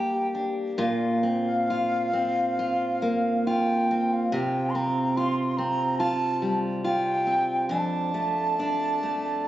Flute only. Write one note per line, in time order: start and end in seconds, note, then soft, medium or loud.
0.00 0.54 G5 medium
0.82 3.49 F5 medium
3.47 4.15 G5 medium
4.13 4.36 F5 medium
4.35 4.71 G5 medium
4.70 4.77 C6 medium
4.76 5.18 A#5 medium
5.17 5.51 C6 medium
5.51 5.59 C6 medium
5.57 5.98 A#5 medium
5.98 6.55 A5 loud
6.84 7.68 G5 medium
7.70 9.48 A5 medium